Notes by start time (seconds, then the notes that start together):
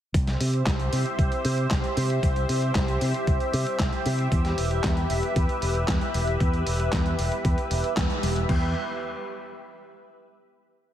0.14 C2 G4 C5 E5, kick, closed hi-hat
0.27 snare, closed hi-hat
0.40 C3, open hi-hat
0.54 closed hi-hat
0.67 C2, kick, snare, clap, closed hi-hat
0.80 closed hi-hat
0.93 C3, open hi-hat
1.06 closed hi-hat
1.19 C2, kick, closed hi-hat
1.32 closed hi-hat
1.45 C3, open hi-hat
1.58 closed hi-hat
1.71 C2, kick, snare, clap, closed hi-hat
1.84 closed hi-hat
1.97 C3, open hi-hat
2.10 closed hi-hat
2.23 C2, kick, closed hi-hat
2.36 closed hi-hat
2.49 C3, open hi-hat
2.62 closed hi-hat
2.75 C2, kick, snare, clap, closed hi-hat
2.88 closed hi-hat
3.01 C3, open hi-hat
3.14 closed hi-hat
3.27 C2, kick, closed hi-hat
3.40 closed hi-hat
3.53 C3, open hi-hat
3.67 closed hi-hat
3.80 C2, kick, snare, clap, closed hi-hat
3.93 closed hi-hat
4.06 C3, open hi-hat
4.19 closed hi-hat
4.32 E2 B4, kick, closed hi-hat
4.45 snare, closed hi-hat
4.58 E1, open hi-hat
4.71 closed hi-hat
4.84 E2, kick, snare, clap, closed hi-hat
4.97 closed hi-hat
5.10 E1, open hi-hat
5.23 closed hi-hat
5.36 E2, kick, closed hi-hat
5.49 closed hi-hat
5.62 E1, open hi-hat
5.75 closed hi-hat
5.88 E2, kick, snare, clap, closed hi-hat
6.01 closed hi-hat
6.14 E1, open hi-hat
6.27 closed hi-hat
6.40 E2, kick, closed hi-hat
6.54 closed hi-hat
6.67 E1, open hi-hat
6.80 closed hi-hat
6.93 E2, kick, snare, clap, closed hi-hat
7.06 closed hi-hat
7.19 E1, open hi-hat
7.32 closed hi-hat
7.45 E2, kick, closed hi-hat
7.58 closed hi-hat
7.71 E1, open hi-hat
7.84 closed hi-hat
7.97 E2, kick, snare, clap, closed hi-hat
8.10 closed hi-hat
8.23 E1, open hi-hat
8.36 closed hi-hat
8.49 E2, kick, crash